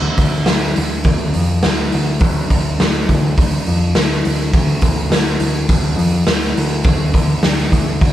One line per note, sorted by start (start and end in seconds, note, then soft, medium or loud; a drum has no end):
0.00 0.15 D2 medium
0.17 0.44 D2 medium
0.17 kick medium
0.17 open hi-hat medium
0.46 0.73 D2 medium
0.46 snare loud
0.46 open hi-hat medium
0.76 1.03 D2 medium
0.76 open hi-hat medium
1.04 1.32 D2 medium
1.04 kick loud
1.04 open hi-hat medium
1.34 1.61 F2 medium
1.34 open hi-hat medium
1.63 1.90 D2 medium
1.63 snare loud
1.63 open hi-hat medium
1.92 2.19 D2 medium
1.92 open hi-hat medium
2.20 2.47 D2 medium
2.20 kick loud
2.20 open hi-hat medium
2.50 2.77 D2 medium
2.50 kick medium
2.50 open hi-hat medium
2.80 3.06 D2 medium
2.80 snare loud
2.80 open hi-hat medium
3.08 3.34 D2 loud
3.08 kick medium
3.08 open hi-hat medium
3.38 3.64 D2 medium
3.38 kick loud
3.38 open hi-hat medium
3.66 3.93 F2 medium
3.66 open hi-hat medium
3.95 4.22 D2 medium
3.95 snare loud
3.95 open hi-hat medium
4.25 4.51 D2 medium
4.25 open hi-hat medium
4.53 4.79 D2 medium
4.53 kick loud
4.53 open hi-hat medium
4.81 5.08 D2 medium
4.81 kick medium
4.81 open hi-hat medium
5.10 5.37 D2 medium
5.10 snare loud
5.10 open hi-hat medium
5.40 5.66 D2 medium
5.40 open hi-hat medium
5.68 5.95 D2 medium
5.68 kick loud
5.68 open hi-hat medium
5.97 6.23 F2 medium
5.97 open hi-hat medium
6.27 6.53 D2 medium
6.27 snare loud
6.27 open hi-hat medium
6.57 6.82 D2 medium
6.57 open hi-hat medium
6.84 7.11 D2 medium
6.84 kick loud
6.84 open hi-hat medium
7.14 7.40 D2 loud
7.14 kick medium
7.14 open hi-hat medium
7.43 7.69 D2 medium
7.43 snare loud
7.43 open hi-hat medium
7.72 7.98 D2 medium
7.72 kick medium
7.72 open hi-hat medium
8.01 8.13 D2 medium
8.01 kick loud
8.01 open hi-hat medium